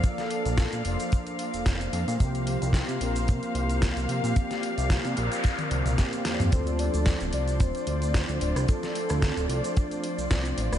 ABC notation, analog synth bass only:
X:1
M:4/4
L:1/16
Q:"Swing 16ths" 1/4=111
K:Dm
V:1 name="Analog synth bass" clef=bass
z3 B,,,2 B,, F,,, z4 F,,, F,,,2 F,, B,, | C,,3 C,,2 C, B,,,2 C, z C,,3 C,, C, B,, | z3 C,,2 C, B,,, z3 C,, C,, z2 F,, F,, | D,,3 D,,2 D,,, C,,2 D,,, z D,,3 D,, D,,, C,, |
z3 D,,2 D,,, C,, z4 C,, C,,2 A,,, D,,, |]